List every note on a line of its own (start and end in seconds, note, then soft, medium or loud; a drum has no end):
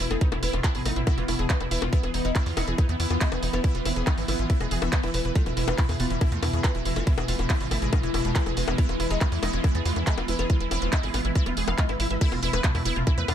0.00 12.20 E3 medium
0.00 5.38 B3 medium
0.00 13.35 B3 medium
0.00 13.35 E4 medium
0.00 13.35 E5 medium
0.00 13.35 B5 medium
0.11 0.18 F1 medium
0.11 0.16 A3 medium
0.11 0.16 G#4 medium
0.11 closed hi-hat soft
0.11 high bongo soft
0.21 0.27 B2 medium
0.21 0.27 D#4 medium
0.21 kick loud
0.21 closed hi-hat medium
0.32 0.39 E1 medium
0.32 0.38 B2 medium
0.32 0.38 E4 medium
0.32 closed hi-hat soft
0.32 high bongo medium
0.43 0.50 E1 loud
0.43 0.48 B3 medium
0.43 0.51 E4 loud
0.43 open hi-hat loud
0.53 0.60 E1 loud
0.53 0.59 B2 medium
0.53 0.59 F4 medium
0.53 closed hi-hat soft
0.53 high bongo soft
0.64 0.70 C4 medium
0.64 0.67 E4 loud
0.64 kick loud
0.64 clap loud
0.64 closed hi-hat medium
0.75 0.82 G#1 medium
0.75 0.81 B2 medium
0.75 0.80 G#4 medium
0.75 open hi-hat medium
0.85 0.93 G#1 loud
0.85 0.91 A3 loud
0.85 0.91 D#4 medium
0.85 open hi-hat loud
0.85 high bongo soft
0.96 1.03 G#1 medium
0.96 1.02 B2 medium
0.96 1.02 E4 medium
0.96 closed hi-hat soft
1.07 1.13 B2 medium
1.07 1.15 E4 loud
1.07 kick loud
1.07 closed hi-hat medium
1.07 high bongo medium
1.18 1.25 E1 medium
1.18 1.23 E3 medium
1.18 1.23 F4 medium
1.18 closed hi-hat soft
1.28 1.35 E1 loud
1.28 1.34 B2 medium
1.28 1.32 E4 loud
1.28 open hi-hat loud
1.28 high bongo soft
1.39 1.46 E1 medium
1.39 1.45 B2 medium
1.39 1.45 G#4 medium
1.39 closed hi-hat soft
1.50 1.56 E3 medium
1.50 1.55 D#4 medium
1.50 kick loud
1.50 clap loud
1.50 closed hi-hat medium
1.60 1.68 E1 medium
1.60 1.66 B2 medium
1.60 1.66 E4 medium
1.60 closed hi-hat soft
1.60 high bongo soft
1.71 1.78 E1 loud
1.71 1.77 E3 medium
1.71 1.80 E4 loud
1.71 open hi-hat loud
1.82 1.89 E1 medium
1.82 1.88 B2 medium
1.82 1.88 F4 medium
1.82 closed hi-hat soft
1.82 high bongo medium
1.93 1.98 B3 loud
1.93 1.96 E4 loud
1.93 kick loud
1.93 closed hi-hat medium
2.03 2.10 E1 medium
2.03 2.09 E3 medium
2.03 2.09 G#4 medium
2.03 closed hi-hat soft
2.03 high bongo soft
2.14 2.21 E1 loud
2.14 2.20 E3 medium
2.14 2.20 D#4 medium
2.14 open hi-hat loud
2.25 2.32 E1 medium
2.25 2.31 D#4 medium
2.25 2.30 E4 medium
2.25 closed hi-hat soft
2.35 2.41 E3 medium
2.35 2.44 E4 loud
2.35 kick loud
2.35 clap loud
2.35 closed hi-hat medium
2.35 high bongo soft
2.46 2.53 E2 medium
2.46 2.52 E3 medium
2.46 2.52 F4 medium
2.46 open hi-hat medium
2.57 2.64 E1 loud
2.57 2.63 D#4 loud
2.57 2.60 E4 loud
2.57 open hi-hat loud
2.57 high bongo medium
2.68 2.75 E1 medium
2.68 2.73 E3 medium
2.68 2.73 G#4 medium
2.68 closed hi-hat soft
2.78 2.84 E3 medium
2.78 2.84 D#4 medium
2.78 kick loud
2.78 closed hi-hat medium
2.78 high bongo soft
2.89 2.96 E2 medium
2.89 2.95 B3 loud
2.89 2.95 E4 medium
2.89 closed hi-hat soft
3.00 3.07 E2 loud
3.00 3.06 E3 medium
3.00 3.08 E4 loud
3.00 open hi-hat loud
3.10 3.18 E2 medium
3.10 3.16 E3 medium
3.10 3.16 F4 medium
3.10 closed hi-hat soft
3.10 high bongo soft
3.21 3.27 G#3 loud
3.21 3.25 E4 loud
3.21 kick loud
3.21 clap loud
3.21 closed hi-hat medium
3.32 3.39 E1 medium
3.32 3.38 E3 medium
3.32 3.38 G#4 medium
3.32 closed hi-hat soft
3.32 high bongo medium
3.43 3.50 E1 loud
3.43 3.48 E3 medium
3.43 3.48 D#4 medium
3.43 open hi-hat loud
3.53 3.60 F1 loud
3.53 3.59 B3 medium
3.53 3.59 E4 medium
3.53 closed hi-hat soft
3.53 high bongo soft
3.64 3.70 E3 medium
3.64 3.73 E4 loud
3.64 kick loud
3.64 closed hi-hat medium
3.75 3.82 E1 medium
3.75 3.81 E3 medium
3.75 3.80 F4 medium
3.75 closed hi-hat soft
3.85 3.93 E1 loud
3.85 3.91 C4 medium
3.85 3.89 E4 loud
3.85 open hi-hat loud
3.85 high bongo soft
3.96 4.03 E1 loud
3.96 4.02 E3 medium
3.96 4.02 G#4 medium
3.96 closed hi-hat soft
4.07 4.13 D#4 medium
4.07 kick loud
4.07 clap loud
4.07 closed hi-hat medium
4.07 high bongo medium
4.18 4.25 G#1 medium
4.18 4.23 E3 medium
4.18 4.23 E4 medium
4.18 open hi-hat medium
4.28 4.35 G#1 loud
4.28 4.34 B3 loud
4.28 4.37 E4 loud
4.28 open hi-hat loud
4.28 high bongo soft
4.39 4.46 G#1 medium
4.39 4.45 E3 medium
4.39 4.45 F4 medium
4.39 closed hi-hat soft
4.50 4.56 E3 medium
4.50 4.53 E4 loud
4.50 kick loud
4.50 closed hi-hat medium
4.60 4.68 E1 medium
4.60 4.66 G#3 medium
4.60 4.66 G#4 medium
4.60 closed hi-hat soft
4.60 high bongo soft
4.71 4.78 E1 loud
4.71 4.77 E3 medium
4.71 4.75 G#4 loud
4.71 open hi-hat loud
4.82 4.89 E1 medium
4.82 4.88 E3 medium
4.82 4.88 E5 medium
4.82 closed hi-hat soft
4.82 high bongo medium
4.93 4.98 E3 medium
4.93 4.98 D#4 medium
4.93 kick loud
4.93 clap loud
4.93 closed hi-hat medium
5.03 5.10 E1 medium
5.03 5.09 E3 medium
5.03 5.09 E4 loud
5.03 closed hi-hat soft
5.03 high bongo soft
5.14 5.21 E1 loud
5.14 5.20 E3 medium
5.14 5.20 E4 medium
5.14 open hi-hat loud
5.25 5.32 E1 medium
5.25 5.31 E3 medium
5.25 5.28 B4 medium
5.25 closed hi-hat soft
5.35 12.23 G#3 medium
5.35 5.41 A3 loud
5.35 5.41 F4 medium
5.35 kick loud
5.35 closed hi-hat medium
5.46 5.53 E1 medium
5.46 5.52 B2 medium
5.46 5.52 E4 medium
5.46 closed hi-hat soft
5.46 high bongo soft
5.57 5.64 E1 loud
5.57 5.63 B2 medium
5.57 5.65 E4 loud
5.57 open hi-hat loud
5.68 5.75 E1 medium
5.68 5.73 B3 medium
5.68 5.73 F4 medium
5.68 closed hi-hat soft
5.68 high bongo medium
5.78 5.84 B2 medium
5.78 5.82 E4 loud
5.78 kick loud
5.78 clap loud
5.78 closed hi-hat medium
5.89 5.96 E2 medium
5.89 5.95 B2 medium
5.89 5.95 G#4 medium
5.89 open hi-hat medium
5.89 high bongo soft
6.00 6.07 E1 loud
6.00 6.06 B3 loud
6.00 6.05 F4 medium
6.00 open hi-hat loud
6.10 6.18 E1 medium
6.10 6.16 B2 medium
6.10 6.16 E4 medium
6.10 closed hi-hat soft
6.21 6.27 B2 medium
6.21 6.30 E4 loud
6.21 kick loud
6.21 closed hi-hat medium
6.21 high bongo soft
6.32 6.39 E2 medium
6.32 6.38 A3 medium
6.32 6.38 F4 medium
6.32 closed hi-hat soft
6.43 6.50 E2 loud
6.43 6.48 B2 medium
6.43 6.46 E4 loud
6.43 open hi-hat loud
6.43 high bongo medium
6.53 6.60 E2 medium
6.53 6.59 B2 medium
6.53 6.59 G#4 medium
6.53 closed hi-hat soft
6.64 6.70 E3 loud
6.64 6.70 F4 medium
6.64 kick loud
6.64 clap loud
6.64 closed hi-hat medium
6.64 high bongo soft
6.75 6.82 E1 medium
6.75 6.81 B2 medium
6.75 6.80 E4 medium
6.75 closed hi-hat soft
6.85 6.93 E1 loud
6.85 6.91 B2 medium
6.85 6.94 E4 loud
6.85 open hi-hat loud
6.96 7.03 F1 medium
6.96 7.02 A3 medium
6.96 7.02 F4 medium
6.96 closed hi-hat soft
6.96 high bongo soft
7.07 7.13 B2 medium
7.07 7.10 E4 loud
7.07 kick loud
7.07 closed hi-hat medium
7.18 7.25 E1 medium
7.18 7.23 B2 medium
7.18 7.23 G#4 medium
7.18 closed hi-hat soft
7.18 high bongo medium
7.28 7.35 E1 loud
7.28 7.34 B3 medium
7.28 7.34 F4 medium
7.28 open hi-hat loud
7.39 7.46 E1 loud
7.39 7.45 B2 medium
7.39 7.45 E4 medium
7.39 closed hi-hat soft
7.39 high bongo soft
7.50 7.56 C4 medium
7.50 7.58 E4 loud
7.50 kick loud
7.50 clap loud
7.50 closed hi-hat medium
7.60 7.68 G#1 medium
7.60 7.66 B2 medium
7.60 7.66 F4 medium
7.60 open hi-hat medium
7.71 7.78 G#1 loud
7.71 7.77 A3 loud
7.71 7.75 E4 loud
7.71 open hi-hat loud
7.71 high bongo soft
7.82 7.89 G#1 medium
7.82 7.88 B2 medium
7.82 7.88 G#4 medium
7.82 closed hi-hat soft
7.93 7.98 B2 medium
7.93 7.98 F4 medium
7.93 kick loud
7.93 closed hi-hat medium
7.93 high bongo medium
8.03 8.10 E1 medium
8.03 8.09 E3 loud
8.03 8.09 E4 medium
8.03 closed hi-hat soft
8.14 8.21 E1 loud
8.14 8.20 B2 medium
8.14 8.23 E4 loud
8.14 open hi-hat loud
8.14 high bongo soft
8.25 8.32 E1 medium
8.25 8.31 B2 medium
8.25 8.30 F4 medium
8.25 closed hi-hat soft
8.36 8.41 E3 medium
8.36 8.39 E4 loud
8.36 kick loud
8.36 clap loud
8.36 closed hi-hat medium
8.46 8.53 E1 medium
8.46 8.52 B2 medium
8.46 8.52 G#4 medium
8.46 closed hi-hat soft
8.46 high bongo soft
8.57 8.64 E1 loud
8.57 8.63 E3 medium
8.57 8.63 F4 medium
8.57 open hi-hat loud
8.68 8.75 E1 medium
8.68 8.73 B2 medium
8.68 8.73 E4 medium
8.68 closed hi-hat soft
8.68 high bongo medium
8.78 8.84 B3 loud
8.78 8.87 E4 loud
8.78 kick loud
8.78 closed hi-hat medium
8.89 8.96 E1 medium
8.89 8.95 E3 medium
8.89 8.95 F4 medium
8.89 closed hi-hat soft
8.89 high bongo soft
9.00 9.07 E1 loud
9.00 9.06 E3 medium
9.00 9.03 E4 loud
9.00 open hi-hat loud
9.10 9.18 E1 loud
9.10 9.16 D#4 medium
9.10 9.16 G#4 medium
9.10 closed hi-hat soft
9.21 9.27 E3 medium
9.21 9.27 F4 medium
9.21 kick loud
9.21 clap loud
9.21 closed hi-hat medium
9.21 high bongo soft
9.32 9.39 E2 medium
9.32 9.38 E3 medium
9.32 9.38 E4 medium
9.32 open hi-hat medium
9.43 9.50 E1 loud
9.43 9.48 D#4 loud
9.43 9.51 E4 loud
9.43 open hi-hat loud
9.43 high bongo medium
9.53 9.60 E1 loud
9.53 9.59 E3 medium
9.53 9.59 F4 medium
9.53 closed hi-hat soft
9.64 9.70 E3 medium
9.64 9.67 E4 loud
9.64 kick loud
9.64 closed hi-hat medium
9.64 high bongo soft
9.75 9.82 E2 medium
9.75 9.81 B3 loud
9.75 9.80 G#4 medium
9.75 closed hi-hat soft
9.85 9.93 E2 loud
9.85 9.91 E3 medium
9.85 9.91 F4 medium
9.85 open hi-hat loud
9.96 10.03 E2 medium
9.96 10.02 E3 medium
9.96 10.02 E4 medium
9.96 closed hi-hat soft
9.96 high bongo soft
10.07 10.13 G#3 loud
10.07 10.15 E4 loud
10.07 kick loud
10.07 clap loud
10.07 closed hi-hat medium
10.18 10.25 E1 medium
10.18 10.23 E3 medium
10.18 10.23 F4 medium
10.18 closed hi-hat soft
10.18 high bongo medium
10.28 10.35 E1 loud
10.28 10.34 E3 medium
10.28 10.32 E4 loud
10.28 open hi-hat loud
10.39 10.46 F1 medium
10.39 10.45 B3 medium
10.39 10.45 G#4 medium
10.39 closed hi-hat soft
10.39 high bongo soft
10.50 10.56 E3 medium
10.50 10.55 F4 medium
10.50 kick loud
10.50 closed hi-hat medium
10.60 10.68 E1 medium
10.60 10.66 E3 medium
10.60 10.66 E4 medium
10.60 closed hi-hat soft
10.71 10.78 E1 loud
10.71 10.77 C4 medium
10.71 10.80 E4 loud
10.71 open hi-hat loud
10.71 high bongo soft
10.82 10.89 E1 medium
10.82 10.88 E3 medium
10.82 10.88 F4 medium
10.82 closed hi-hat soft
10.93 10.98 D#4 medium
10.93 10.96 E4 loud
10.93 kick loud
10.93 clap loud
10.93 closed hi-hat medium
10.93 high bongo medium
11.03 11.10 G#1 medium
11.03 11.09 E3 medium
11.03 11.09 G#4 medium
11.03 open hi-hat medium
11.14 11.21 G#1 loud
11.14 11.20 B3 loud
11.14 11.20 F4 medium
11.14 open hi-hat loud
11.14 high bongo soft
11.25 11.32 G#1 medium
11.25 11.31 E3 medium
11.25 11.30 E4 medium
11.25 closed hi-hat soft
11.35 11.41 E3 medium
11.35 11.44 E4 loud
11.35 kick loud
11.35 closed hi-hat medium
11.35 swell medium
11.46 11.53 E1 medium
11.46 11.52 B3 medium
11.46 11.52 F4 medium
11.46 closed hi-hat soft
11.46 high bongo soft
11.57 11.64 E1 loud
11.57 11.63 E3 medium
11.57 11.63 G#4 medium
11.57 open hi-hat loud
11.68 11.75 E1 medium
11.68 11.73 E3 medium
11.68 11.76 F5 medium
11.68 closed hi-hat soft
11.68 high bongo medium
11.78 11.84 D#4 medium
11.78 11.87 F4 medium
11.78 kick loud
11.78 clap loud
11.78 closed hi-hat medium
11.89 11.96 G#1 medium
11.89 11.95 E3 medium
11.89 11.95 E4 medium
11.89 closed hi-hat soft
11.89 high bongo soft
12.00 12.07 G#1 loud
12.00 12.03 E4 medium
12.00 12.06 E4 medium
12.00 open hi-hat loud
12.10 12.18 G#1 medium
12.10 12.16 E3 medium
12.10 12.16 E5 medium
12.10 closed hi-hat soft
12.21 13.35 E3 medium
12.21 12.27 A3 loud
12.21 13.35 B3 medium
12.21 12.30 E4 loud
12.21 kick loud
12.21 closed hi-hat medium
12.21 crash medium
12.32 12.39 E1 medium
12.32 12.38 B2 medium
12.32 12.38 F4 medium
12.32 closed hi-hat soft
12.32 high bongo soft
12.43 12.50 E1 loud
12.43 12.48 B2 medium
12.43 12.46 E4 loud
12.43 open hi-hat loud
12.53 12.60 E1 medium
12.53 12.59 B3 medium
12.53 12.59 B4 loud
12.53 closed hi-hat soft
12.53 high bongo medium
12.64 12.70 B2 medium
12.64 12.70 F4 medium
12.64 kick loud
12.64 clap loud
12.64 closed hi-hat medium
12.75 12.82 E2 medium
12.75 12.81 B2 medium
12.75 12.80 E4 medium
12.75 open hi-hat medium
12.75 high bongo soft
12.85 12.93 E1 loud
12.85 12.91 B3 loud
12.85 12.94 E4 loud
12.85 open hi-hat loud
12.96 13.03 E1 loud
12.96 13.02 B2 medium
12.96 13.02 F4 medium
12.96 closed hi-hat soft
13.07 13.13 B2 medium
13.07 13.10 E4 loud
13.07 kick loud
13.07 closed hi-hat medium
13.07 high bongo soft
13.18 13.25 E2 medium
13.18 13.23 A3 loud
13.18 13.25 B3 medium
13.18 13.23 B4 loud
13.18 closed hi-hat soft
13.28 13.35 E2 loud
13.28 13.34 B2 medium
13.28 13.34 F4 medium
13.28 open hi-hat loud
13.28 high bongo medium